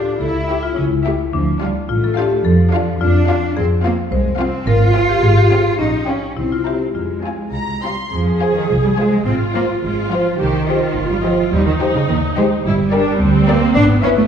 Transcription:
Already playing: D4 F4 G4 F5
0.21 C#2 E4 A4
0.49 E4 G4 E5
0.63 F4
0.76 C#2 C#4 E4
1.05 A3 E4 G4 E5
1.33 D2 F3 D4
1.62 G3 D4 F4 F5
1.89 A1 A3 F4
2.04 A4
2.17 D4 F4 G4 F5
2.45 F2 F3 A4
2.72 D4 F4 F5
3.01 F2 D4 F4
3.29 D4 F4 F5
3.57 F2 C4 G#4
3.84 A#3 C4 F4 F5
4.12 C2 G#3 C5
4.39 C4 F4 F5
4.67 G#1 F4 A#4
4.95 C4 F4 F5
5.09 G4
5.22 G#1 G#4
5.38 G4
5.50 C4 F4 G#4 F5
5.79 A#1 C#4 D#4
6.08 C#4 F4 G5
6.37 C2 C4 E4
6.52 F4
6.66 C4 E4 G4 A#5
6.95 F2 G#3 F4
7.24 C4 F4 G#5
7.53 C2 A#5
7.83 G3 C4 F4 C6
8.12 F2 F3 G#4
8.42 F4 G#4 C5 G#5
8.56 D#3
8.69 C2 F3
8.84 G3
8.98 G#3 F4 G#4 C5 G#5
9.26 G#1 C4 F4
9.55 A#3 F4 C5 F5
9.82 G#1 G#3 F4
10.11 F3 F4 C5 F5
10.39 C2 D#3 G4
10.68 F4 G4 C5 D#5
10.96 G1
11.10 G3
11.24 F3 G4 C5 D#5
11.52 D#2 G3 D#4
11.66 D#3
11.80 F3 G4 C5 D#5
11.95 C#3
12.08 D#2 D#3
12.37 G#3 G4 C5 D#5
12.64 G1 G3 E4
12.92 D4 G4 A#4 D5
13.20 D2 C4
13.47 A#3 G4 A#4 D5
13.75 G#1 B3 D4
14.03 C#4 E4 B4 E5
14.17 A3

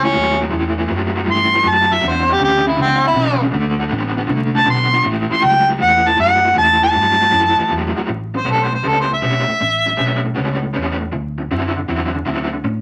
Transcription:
Already playing: C#2
0.03 A2 E3 C#4
0.14 D#2 A2 F#3
0.39 A2 F#3
0.52 E2 A2 E3
0.77 A2 E3
0.90 F#2 A2 F#3
1.15 A2 F#3
1.27 G2 A2 E3
1.31 C6
1.54 A2 E3
1.64 F#2 A2 F#3
1.68 A5
1.91 A2 F#3 E5
2.03 E2 B2
2.08 C5
2.27 E2 B2
2.33 G4
2.40 D2 E2 C#3 G4
2.66 E2 C#3 E4
2.77 C#2 E2 B2
2.81 C4
3.02 E2 B2
3.08 E4
3.16 B1 E2 C#3
3.41 E2 C#3
3.52 D2 D3 A3
3.79 D3 A3
3.91 A1 D3 B3
4.17 D3 B3
4.29 C2 D3 A3
4.54 D3 A3 A5
4.67 B1 D3 B3 C6
4.94 D3 B3
5.05 A1 A2 E3
5.30 A2 E3 C6
5.43 C#2 A2 F#3 G5
5.68 A2 F#3
5.80 E2 A2 E3 F#5
6.06 A2 E3 A5
6.19 F#2 A2 F#3 F#5
6.44 A2 F#3
6.56 E2 A2 E3 A5
6.81 A2 E3 A5
6.95 G2 A2 F#3
7.21 A2 F#3
7.32 F#2 A2 E3
7.58 A2 E3
7.70 E2 A2 F#3
7.97 A2 F#3, muted fingered electric bass stroke
8.08 A1, muted overdriven electric guitar stroke
8.34 C5, muted overdriven electric guitar stroke
8.45 B1 A2 G3 B3 C#4
8.51 A4
8.63 C5
8.71 C5, muted overdriven electric guitar stroke
8.83 C#2 A2 G3 B3 C#4
8.88 A4
9.00 C5
9.09 muted overdriven electric guitar stroke
9.14 E5
9.22 B1 A2 G3 B3 C#4
9.47 muted overdriven electric guitar stroke
9.60 A1, muted overdriven electric guitar stroke
9.86 muted overdriven electric guitar stroke
9.97 B1 A2 G3 B3 C#4
10.23 muted overdriven electric guitar stroke
10.34 C#2 A2 G3 B3 C#4
10.61 muted overdriven electric guitar stroke
10.73 E2 A2 G3 B3 C#4
10.99 muted overdriven electric guitar stroke
11.12 D2, muted overdriven electric guitar stroke
11.38 muted overdriven electric guitar stroke
11.51 F#2 D3 F#3 C4 E4
11.76 muted overdriven electric guitar stroke
11.88 E2 D3 F#3 C4 E4
12.14 muted overdriven electric guitar stroke
12.25 D2 D3 F#3 C4 E4
12.51 muted overdriven electric guitar stroke
12.64 A2, muted overdriven electric guitar stroke

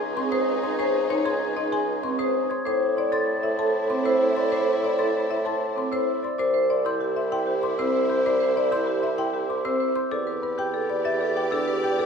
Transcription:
Already playing: C#2 D#4 G#4
0.16 C4 C6 C#6
0.32 C5 D#6
0.63 C#5 C6 G#6
0.79 C5 C#6
1.10 D#4 C#5 C6
1.25 G#4 C6 G#6
1.57 D#4 D#5 C6
1.72 G#4 G#5 C6
2.03 C4 C6 C#6
2.19 C5 D#6
2.50 C#5 C6 G#6
2.65 A2 E4 C5 D6
2.97 E4 D5 C6
3.12 A4 C6 A6
3.43 E4 E5 C6
3.58 A4 A5 C6
3.90 C4 C6 D6
4.05 C5 E6
4.36 D5 C6 A6
4.52 C5 D6
4.83 E4 D5 C6
4.99 A4 C6 A6
5.30 E4 E5 C6
5.45 A4 A5 C6
5.76 C4 C6 D6
5.92 C5 E6
6.23 D5 C6 A6
6.38 C2 E4 C5 D5 D6
6.54 C5
6.70 D5 C6
6.85 E4 C6 G6
7.01 G4
7.16 E5 C6
7.32 E4 G5 C6
7.47 G4
7.63 C6 D6
7.79 C4 C5 E6
7.94 C5
8.09 C6 G6
8.25 C5 D5 D6
8.40 C5
8.56 D5 C6
8.72 E4 C6 G6
8.87 G4
9.03 E5 C6
9.18 E4 G5 C6
9.34 G4
9.49 C6 D6
9.65 C4 C5 E6
9.80 C5
9.96 C6 G6
10.10 E2 G4 A4 D5 D6
10.27 B4
10.42 B4 B5
10.58 G4 G5 G6
10.74 A4
10.89 D5 B5
11.05 G4 E5 A6
11.21 A4
11.36 G5 D6
11.51 D4 A4 E6
11.68 B4
11.83 G5 G6
11.98 A4 D5 D6

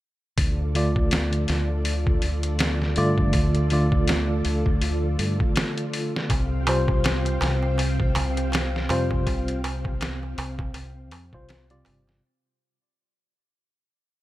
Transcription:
0.38 D2 F4 A4 D5, kick, open hi-hat
0.75 D3 A3 F4 D5, open hi-hat
0.96 kick
1.11 snare, open hi-hat
1.33 closed hi-hat
1.48 D2, snare, open hi-hat
1.85 open hi-hat
2.07 kick
2.22 D2, open hi-hat
2.43 closed hi-hat
2.59 snare, open hi-hat
2.82 snare
2.96 G2 D3 A3 F4 D5, open hi-hat
3.18 kick
3.33 D2, kick, open hi-hat
3.55 closed hi-hat
3.70 D3 A3 F4 D5, open hi-hat
3.92 kick
4.08 snare, open hi-hat
4.45 D2, open hi-hat
4.66 kick
4.82 D2, open hi-hat
5.19 G2, open hi-hat
5.40 kick
5.56 snare, open hi-hat
5.78 closed hi-hat
5.93 open hi-hat
6.16 snare
6.30 C2 C4 C5 F5 G5, kick, open hi-hat, darbuka tek
6.67 C3 G3 F4 C5, open hi-hat, darbuka tek
6.88 kick, darbuka tek
7.04 snare, open hi-hat, darbuka tek
7.25 closed hi-hat, darbuka tek
7.41 C2, snare, open hi-hat, darbuka tek
7.63 darbuka tek
7.78 open hi-hat, darbuka tek
8.00 kick
8.15 C2, open hi-hat, darbuka tek, darbuka dum
8.37 closed hi-hat, darbuka tek
8.52 snare, open hi-hat, darbuka tek
8.76 snare
8.89 F2 C3 G3 F4 C5, open hi-hat, darbuka tek
9.10 kick, darbuka tek
9.27 C2, kick, open hi-hat, darbuka tek
9.48 closed hi-hat
9.64 open hi-hat, darbuka tek
9.84 kick, darbuka tek
10.01 snare, open hi-hat, darbuka tek
10.23 darbuka tek
10.38 C2, open hi-hat, darbuka tek
10.59 kick, darbuka tek
10.74 C2, open hi-hat, darbuka tek
11.11 F2, open hi-hat, darbuka tek
11.33 C2 C3 G3 F4 C5, kick, darbuka tek
11.49 snare, open hi-hat, darbuka tek
11.70 C3 G3 F4 D5, closed hi-hat, darbuka dum
11.85 G1, open hi-hat, darbuka tek, darbuka dum
12.07 snare, darbuka tek

